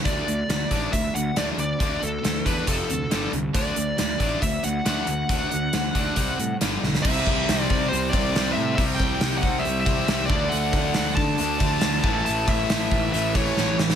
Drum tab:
CC |----------------|----------------|----------------|----------------|
HH |x-x-x-x-x-x-x-x-|x-x-x-x-x-x-x-x-|x-x-x-x-x-x-x-x-|x-x-x-x-x-x-x---|
SD |----o-------o---|----o-------o---|----o-------o---|----o-------o-oo|
BD |o-----o-o-------|o-----o-o-------|o-----o-o-------|o-----o-o-------|

CC |x---------------|----------------|----------------|----------------|
HH |----o---o---o---|o---o---o---o---|o---o---o---o---|o---o---o-------|
SD |----o-------o---|----o-------o---|----o-------o---|----o-------o-oo|
BD |o-o---o---o-----|o-o---o---o---o-|--o---o---o---o-|--o---o---o-----|